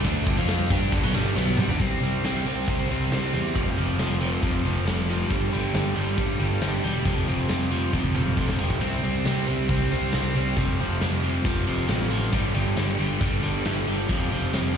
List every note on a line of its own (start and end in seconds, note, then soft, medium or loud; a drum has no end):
0.04 0.25 D2 loud
0.04 0.26 D3 loud
0.04 0.26 A3 loud
0.04 0.26 D4 loud
0.04 kick loud
0.04 ride loud
0.26 0.37 G1 medium
0.26 0.37 G2 medium
0.26 0.37 D3 medium
0.26 kick loud
0.26 ride medium
0.37 0.68 F2 loud
0.37 0.69 F3 medium
0.37 0.69 C4 medium
0.37 0.70 F4 loud
0.48 snare loud
0.48 ride loud
0.70 0.91 G2 medium
0.70 0.92 G3 loud
0.70 0.92 D4 loud
0.70 0.92 G4 loud
0.70 kick loud
0.70 ride medium
0.92 1.02 G1 loud
0.92 1.03 G2 medium
0.92 1.03 D3 loud
0.92 kick loud
0.92 ride loud
1.04 1.14 B1 medium
1.04 1.14 B2 medium
1.04 1.14 F#3 medium
1.14 1.35 G1 loud
1.14 1.35 G2 medium
1.14 1.36 D3 loud
1.14 1.36 G3 loud
1.14 ride medium
1.26 snare soft
1.36 1.56 B1 loud
1.36 1.57 B2 medium
1.36 1.57 F#3 medium
1.36 1.58 B3 loud
1.36 snare medium
1.57 1.68 C2 medium
1.57 1.68 C3 medium
1.57 1.68 G3 medium
1.57 mid tom loud
1.69 1.79 G1 medium
1.69 1.80 G2 loud
1.69 1.80 D3 loud
1.69 floor tom medium
1.79 1.98 C2 medium
1.79 2.02 C3 medium
1.79 2.02 G3 loud
1.79 2.03 C4 loud
1.79 kick medium
1.79 closed hi-hat medium
2.02 2.20 C2 medium
2.02 2.24 C3 medium
2.02 2.24 G3 medium
2.02 2.25 C4 medium
2.02 closed hi-hat medium
2.24 2.42 C2 medium
2.24 2.46 C3 medium
2.24 2.46 G3 medium
2.24 2.47 C4 medium
2.24 snare medium
2.24 closed hi-hat medium
2.46 2.64 C2 medium
2.46 2.68 C3 medium
2.46 2.69 G3 medium
2.46 2.69 C4 medium
2.46 closed hi-hat medium
2.68 2.86 C2 medium
2.68 2.90 C3 medium
2.68 2.91 G3 medium
2.68 2.91 C4 medium
2.68 kick loud
2.68 closed hi-hat medium
2.90 3.08 C2 medium
2.90 3.12 C3 medium
2.90 3.12 G3 medium
2.90 3.13 C4 medium
2.90 closed hi-hat medium
3.11 3.29 C2 medium
3.11 3.32 C3 medium
3.11 3.33 G3 medium
3.11 3.33 C4 medium
3.11 snare loud
3.11 closed hi-hat medium
3.34 3.52 E2 medium
3.34 3.54 C3 medium
3.34 3.54 G3 medium
3.34 3.54 C4 medium
3.34 closed hi-hat medium
3.55 3.74 F1 medium
3.55 3.75 F2 loud
3.55 3.76 C3 medium
3.55 3.76 F3 medium
3.55 kick loud
3.55 closed hi-hat medium
3.77 3.96 F1 medium
3.77 3.97 F2 medium
3.77 3.98 C3 medium
3.77 3.98 F3 medium
3.77 closed hi-hat medium
3.98 4.36 F1 medium
3.98 4.19 F2 medium
3.98 4.20 C3 medium
3.98 4.20 F3 medium
3.98 snare loud
3.98 closed hi-hat medium
4.20 4.42 F2 medium
4.20 4.42 C3 loud
4.20 4.43 F3 medium
4.20 closed hi-hat medium
4.43 4.61 F1 medium
4.43 4.64 F2 medium
4.43 4.65 C3 medium
4.43 4.65 F3 medium
4.43 kick loud
4.43 closed hi-hat medium
4.65 4.83 F1 medium
4.65 4.85 F2 medium
4.65 4.86 C3 medium
4.65 4.87 F3 medium
4.65 closed hi-hat medium
4.86 5.23 F1 medium
4.86 5.08 F2 medium
4.86 5.08 C3 medium
4.86 5.09 F3 medium
4.86 snare loud
4.86 closed hi-hat medium
4.98 snare soft
5.09 5.29 F2 medium
5.09 5.30 C3 medium
5.09 5.30 F3 medium
5.09 closed hi-hat medium
5.30 5.49 G1 medium
5.30 5.52 G2 medium
5.30 5.52 D3 medium
5.30 5.53 G3 loud
5.30 kick medium
5.30 closed hi-hat medium
5.52 5.71 G1 medium
5.52 5.73 G2 medium
5.52 5.74 D3 medium
5.52 5.74 G3 medium
5.52 closed hi-hat medium
5.74 5.93 G1 medium
5.74 5.95 G2 medium
5.74 5.95 D3 medium
5.74 5.95 G3 loud
5.74 snare loud
5.74 closed hi-hat medium
5.96 6.15 G1 medium
5.96 6.17 G2 medium
5.96 6.17 D3 medium
5.96 6.17 G3 medium
5.96 closed hi-hat medium
6.18 6.36 G1 medium
6.18 6.38 G2 medium
6.18 6.38 D3 medium
6.18 6.39 G3 medium
6.18 kick loud
6.18 closed hi-hat medium
6.39 6.59 G1 medium
6.39 6.60 G2 medium
6.39 6.61 D3 medium
6.39 6.61 G3 medium
6.39 closed hi-hat medium
6.61 6.80 G1 medium
6.61 6.83 G2 medium
6.61 6.83 D3 medium
6.61 6.83 G3 medium
6.61 snare medium
6.61 closed hi-hat medium
6.84 7.02 E1 medium
6.84 7.04 G2 medium
6.84 7.05 D3 medium
6.84 7.05 G3 medium
6.84 closed hi-hat medium
7.05 7.24 F1 medium
7.05 7.26 F2 medium
7.05 7.27 C3 medium
7.05 7.27 F3 medium
7.05 kick loud
7.05 closed hi-hat medium
7.27 7.46 F1 medium
7.27 7.48 F2 medium
7.27 7.49 C3 medium
7.27 7.49 F3 medium
7.27 closed hi-hat medium
7.49 7.86 F1 medium
7.49 7.70 F2 medium
7.49 7.70 C3 medium
7.49 7.71 F3 medium
7.49 snare loud
7.49 closed hi-hat medium
7.71 7.93 F2 medium
7.71 7.93 C3 medium
7.71 7.94 F3 loud
7.71 closed hi-hat medium
7.93 8.12 F1 loud
7.93 8.14 F2 medium
7.93 8.14 C3 loud
7.93 8.14 F3 medium
7.93 kick loud
7.93 high tom medium
8.04 kick medium
8.15 8.34 F1 medium
8.15 8.37 F2 medium
8.15 8.37 C3 medium
8.15 8.37 F3 medium
8.15 mid tom medium
8.26 mid tom medium
8.37 8.74 F1 medium
8.37 8.58 F2 medium
8.37 8.59 C3 medium
8.37 8.59 F3 medium
8.37 kick medium
8.49 snare medium
8.59 8.80 F2 medium
8.59 8.80 C3 medium
8.59 8.81 F3 medium
8.59 floor tom medium
8.70 kick medium
8.81 9.00 C2 medium
8.81 9.02 C3 medium
8.81 9.03 G3 medium
8.81 9.04 C4 loud
8.81 kick medium
8.81 closed hi-hat medium
8.81 splash medium
9.03 9.22 C2 medium
9.03 9.25 C3 medium
9.03 9.25 G3 medium
9.03 9.26 C4 medium
9.03 closed hi-hat medium
9.25 9.44 C2 medium
9.25 9.46 C3 medium
9.25 9.46 G3 medium
9.25 9.48 C4 medium
9.25 snare loud
9.25 closed hi-hat medium
9.47 9.66 C2 medium
9.47 9.68 C3 medium
9.47 9.69 G3 medium
9.47 9.69 C4 medium
9.47 closed hi-hat medium
9.69 9.88 C2 medium
9.69 9.90 C3 medium
9.69 9.90 G3 medium
9.69 9.91 C4 medium
9.69 kick loud
9.69 closed hi-hat medium
9.91 10.10 C2 medium
9.91 10.12 C3 medium
9.91 10.12 G3 medium
9.91 10.13 C4 medium
9.91 closed hi-hat medium
10.12 10.32 C2 medium
10.12 10.34 C3 medium
10.12 10.35 G3 medium
10.12 10.35 C4 medium
10.12 snare loud
10.12 closed hi-hat medium
10.35 10.54 C2 medium
10.35 10.56 C3 medium
10.35 10.56 G3 medium
10.35 10.56 C4 medium
10.35 closed hi-hat medium
10.57 10.76 F1 medium
10.57 10.78 F2 loud
10.57 10.78 C3 loud
10.57 10.79 F3 loud
10.57 kick loud
10.57 closed hi-hat medium
10.79 10.98 F1 medium
10.79 11.00 F2 medium
10.79 11.00 C3 medium
10.79 11.01 F3 medium
10.79 closed hi-hat medium
11.01 11.38 F1 medium
11.01 11.22 F2 medium
11.01 11.22 C3 medium
11.01 11.23 F3 medium
11.01 snare loud
11.01 closed hi-hat medium
11.23 11.44 F2 medium
11.23 11.44 C3 medium
11.23 11.45 F3 medium
11.23 closed hi-hat medium
11.45 11.64 F1 medium
11.45 11.66 F2 medium
11.45 11.66 C3 medium
11.45 11.67 F3 loud
11.45 kick loud
11.45 closed hi-hat medium
11.67 11.86 F1 medium
11.67 11.86 F2 medium
11.67 11.87 C3 medium
11.67 11.88 F3 medium
11.67 closed hi-hat medium
11.88 12.26 A1 medium
11.88 12.09 F2 medium
11.88 12.09 C3 medium
11.88 12.10 F3 medium
11.88 snare medium
11.88 closed hi-hat medium
12.10 12.32 F2 medium
12.10 12.32 C3 medium
12.10 12.32 F3 medium
12.10 closed hi-hat medium
12.32 12.52 G1 medium
12.32 12.53 G2 medium
12.32 12.53 D3 loud
12.32 12.54 G3 loud
12.32 kick loud
12.32 closed hi-hat medium
12.54 12.74 G1 medium
12.54 12.75 G2 medium
12.54 12.76 D3 medium
12.54 12.76 G3 medium
12.54 closed hi-hat medium
12.76 12.96 G1 medium
12.76 12.98 G2 medium
12.76 12.98 D3 medium
12.76 12.98 G3 loud
12.76 snare loud
12.76 closed hi-hat medium
12.99 13.18 G1 medium
12.99 13.19 G2 medium
12.99 13.20 D3 loud
12.99 13.20 G3 loud
12.99 closed hi-hat medium
13.20 13.39 G1 medium
13.20 13.41 G2 medium
13.20 13.42 D3 loud
13.20 13.42 G3 loud
13.20 kick loud
13.20 closed hi-hat medium
13.42 13.62 G1 medium
13.42 13.64 G2 medium
13.42 13.64 D3 medium
13.42 13.65 G3 medium
13.42 closed hi-hat medium
13.65 13.84 G1 medium
13.65 13.86 G2 medium
13.65 13.86 D3 medium
13.65 13.87 G3 medium
13.65 snare loud
13.65 closed hi-hat medium
13.87 14.06 G1 medium
13.87 14.08 G2 medium
13.87 14.08 D3 medium
13.87 14.08 G3 medium
13.87 closed hi-hat medium
14.09 14.28 F1 medium
14.09 14.30 F2 medium
14.09 14.30 C3 medium
14.09 14.30 F3 loud
14.09 kick loud
14.09 closed hi-hat medium
14.31 14.50 F1 medium
14.31 14.52 F2 medium
14.31 14.52 C3 medium
14.31 14.52 F3 medium
14.31 closed hi-hat medium
14.53 14.77 F1 medium
14.53 14.74 F2 medium
14.53 14.74 C3 medium
14.53 14.75 F3 medium
14.53 snare loud
14.53 closed hi-hat medium